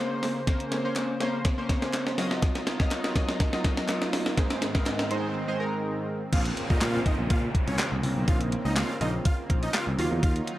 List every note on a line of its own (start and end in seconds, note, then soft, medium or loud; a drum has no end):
0.00 2.14 C#3 medium
0.00 0.37 A#3 medium
0.00 2.14 A#3 medium
0.00 0.37 C#4 medium
0.00 0.37 C5 loud
0.00 2.14 C5 medium
0.00 riser medium
0.23 snare loud
0.23 open hi-hat medium
0.47 0.79 A#3 medium
0.47 0.79 C#4 medium
0.47 0.79 C5 loud
0.47 kick loud
0.47 snare medium
0.47 closed hi-hat medium
0.60 closed hi-hat medium
0.72 snare loud
0.72 closed hi-hat medium
0.84 1.15 A#3 medium
0.84 1.15 C#4 medium
0.84 1.15 C5 loud
0.96 snare medium
0.96 clap medium
0.96 closed hi-hat loud
1.20 1.52 A#3 medium
1.20 1.52 C#4 medium
1.20 1.52 C5 loud
1.20 snare medium
1.20 closed hi-hat medium
1.45 kick loud
1.45 snare loud
1.45 closed hi-hat loud
1.58 1.67 A#3 medium
1.58 1.68 C#4 medium
1.58 1.68 C5 loud
1.69 2.18 A#3 medium
1.69 2.18 C#4 medium
1.69 2.18 C5 loud
1.69 kick medium
1.69 snare loud
1.69 closed hi-hat medium
1.82 snare loud
1.82 closed hi-hat soft
1.93 snare loud
1.93 clap medium
1.93 closed hi-hat medium
2.07 snare loud
2.18 2.70 F#3 loud
2.18 4.35 F#3 medium
2.18 4.35 D#4 medium
2.18 2.70 F4 medium
2.18 4.35 F4 medium
2.18 2.70 D#5 loud
2.18 snare loud
2.18 open hi-hat medium
2.31 snare loud
2.42 kick loud
2.42 snare loud
2.42 closed hi-hat medium
2.55 snare loud
2.55 closed hi-hat medium
2.67 snare loud
2.67 closed hi-hat medium
2.80 3.10 F#3 medium
2.80 3.10 F4 medium
2.80 3.11 D#5 loud
2.80 kick loud
2.80 snare loud
2.91 snare loud
2.91 clap medium
2.91 closed hi-hat loud
3.04 snare loud
3.15 3.47 F#3 loud
3.15 3.47 F4 medium
3.15 3.47 D#5 loud
3.15 kick medium
3.15 snare loud
3.15 closed hi-hat medium
3.29 snare loud
3.40 kick loud
3.40 snare loud
3.40 closed hi-hat loud
3.53 3.63 F#3 medium
3.53 3.63 F4 medium
3.53 3.63 D#5 loud
3.53 snare loud
3.64 4.27 F#3 medium
3.64 4.27 F4 medium
3.64 4.27 D#5 loud
3.64 kick medium
3.64 snare loud
3.64 closed hi-hat medium
3.77 snare loud
3.77 closed hi-hat soft
3.88 snare loud
3.88 clap loud
3.88 closed hi-hat medium
4.02 snare loud
4.13 snare loud
4.13 open hi-hat medium
4.26 snare loud
4.37 6.31 G#2 medium
4.37 6.31 D#3 medium
4.37 4.69 G#3 medium
4.37 6.31 C4 medium
4.37 4.69 D#4 medium
4.37 4.69 C5 medium
4.37 kick loud
4.37 snare loud
4.37 closed hi-hat medium
4.50 snare loud
4.50 closed hi-hat medium
4.62 snare loud
4.62 closed hi-hat medium
4.75 5.05 G#3 medium
4.75 5.06 D#4 medium
4.75 5.06 A#4 loud
4.75 kick loud
4.75 snare loud
4.86 snare loud
4.86 clap medium
4.86 closed hi-hat loud
4.99 snare loud
5.10 5.42 G#3 loud
5.10 5.42 D#4 medium
5.10 5.42 C5 loud
5.10 closed hi-hat medium
5.48 5.58 G#3 loud
5.48 5.58 D#4 medium
5.48 5.58 C5 loud
5.59 6.22 G#3 medium
5.59 6.22 D#4 medium
5.59 6.22 A#4 loud
6.32 6.50 A#1 loud
6.32 6.64 C#3 medium
6.32 9.95 C#3 medium
6.32 6.64 A#3 medium
6.32 9.95 A#3 medium
6.32 6.64 C4 medium
6.32 9.95 C4 medium
6.32 6.64 F4 medium
6.32 6.42 F4 medium
6.32 6.42 F5 medium
6.32 kick loud
6.32 closed hi-hat medium
6.32 crash loud
6.32 downlifter medium
6.45 closed hi-hat medium
6.57 closed hi-hat medium
6.70 6.78 A#2 medium
6.70 6.90 C#3 medium
6.70 6.90 A#3 medium
6.70 6.91 C4 medium
6.70 6.78 D#4 medium
6.70 6.91 F4 medium
6.70 6.78 D#5 medium
6.70 kick loud
6.81 6.99 A#2 loud
6.81 6.99 F4 medium
6.81 6.98 F5 medium
6.81 snare medium
6.81 clap medium
6.81 clap loud
6.81 closed hi-hat loud
6.94 7.77 C#3 medium
6.94 7.77 A#3 medium
6.94 7.77 C4 medium
6.94 7.77 F4 medium
7.06 7.15 D#4 medium
7.06 7.15 D#5 medium
7.06 kick medium
7.06 closed hi-hat medium
7.19 7.27 A#1 medium
7.30 7.47 A#2 loud
7.30 7.40 F4 medium
7.30 7.39 F5 medium
7.30 kick loud
7.30 closed hi-hat loud
7.55 kick loud
7.55 closed hi-hat medium
7.68 7.76 C2 loud
7.68 7.85 C#4 medium
7.68 7.85 C#5 medium
7.68 closed hi-hat medium
7.79 snare loud
7.79 clap loud
7.79 closed hi-hat medium
7.92 8.00 C2 medium
8.03 8.12 C2 loud
8.03 open hi-hat medium
8.16 8.24 B1 medium
8.27 8.54 A#1 loud
8.27 8.90 C#3 medium
8.27 8.91 A#3 medium
8.27 8.91 C4 medium
8.27 8.91 D#4 medium
8.27 8.37 F4 medium
8.27 8.37 F5 loud
8.27 kick loud
8.27 closed hi-hat medium
8.41 closed hi-hat medium
8.52 closed hi-hat medium
8.65 8.82 C#2 medium
8.65 8.74 D#4 medium
8.65 8.73 D#5 medium
8.76 8.94 F4 medium
8.76 8.94 F5 medium
8.76 snare medium
8.76 clap medium
8.76 clap loud
8.76 closed hi-hat loud
9.01 9.18 A#1 loud
9.01 9.43 C#3 medium
9.01 9.43 A#3 medium
9.01 9.43 C4 medium
9.01 9.11 D#4 medium
9.01 9.43 F4 medium
9.01 9.10 D#5 medium
9.01 closed hi-hat medium
9.25 9.35 F4 medium
9.25 9.34 F5 medium
9.25 kick loud
9.25 closed hi-hat loud
9.50 9.67 A#1 loud
9.50 9.98 C#3 medium
9.50 9.98 A#3 medium
9.50 9.99 C4 medium
9.50 9.98 F4 medium
9.50 kick medium
9.50 closed hi-hat medium
9.63 9.71 D#4 medium
9.63 9.71 D#5 medium
9.63 closed hi-hat medium
9.74 9.84 F4 medium
9.74 9.83 F5 medium
9.74 snare loud
9.74 clap medium
9.74 clap loud
9.74 closed hi-hat medium
9.87 9.95 C2 medium
9.98 10.08 D#2 loud
9.98 10.50 D#3 medium
9.98 10.58 F#3 medium
9.98 10.51 F#3 medium
9.98 10.51 A#3 medium
9.98 10.58 D#4 medium
9.98 10.58 F4 medium
9.98 10.51 F4 medium
9.98 10.08 F4 medium
9.98 10.07 F5 medium
9.98 open hi-hat medium
10.12 10.20 E2 medium
10.23 10.40 D#2 loud
10.23 10.32 F4 medium
10.23 10.32 F5 medium
10.23 kick loud
10.23 closed hi-hat medium
10.36 closed hi-hat medium
10.47 closed hi-hat medium